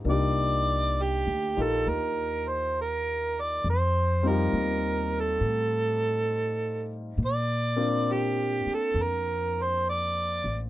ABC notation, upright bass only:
X:1
M:4/4
L:1/8
Q:"Swing" 1/4=67
K:Bb
V:1 name="Upright bass" clef=bass
C,,2- (3C,, D,, B,,, E,,4 | F,,2 E,,2 A,,4 | B,,3 z F,,3 A,,, |]